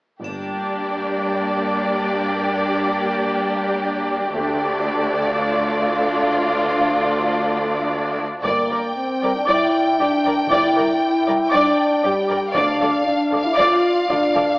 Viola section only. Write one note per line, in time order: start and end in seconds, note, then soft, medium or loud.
0.24 4.31 A#3 soft
0.24 4.31 D4 soft
4.34 8.21 A3 soft
4.34 8.21 D4 soft
8.45 8.69 D5 soft
8.71 8.79 D5 soft
9.23 9.31 D5 soft
9.48 9.72 D5 soft
10.00 10.08 D5 soft
10.26 10.34 D5 soft
10.51 10.74 D5 soft
10.76 10.84 D5 soft
11.27 11.35 D5 soft
11.52 11.76 D5 soft
12.04 12.12 D5 soft
12.30 12.38 D5 soft
12.56 12.80 D5 soft
12.81 12.89 D5 soft
13.32 13.40 D5 soft
13.57 13.81 D5 soft
14.09 14.17 D5 soft
14.35 14.43 D5 soft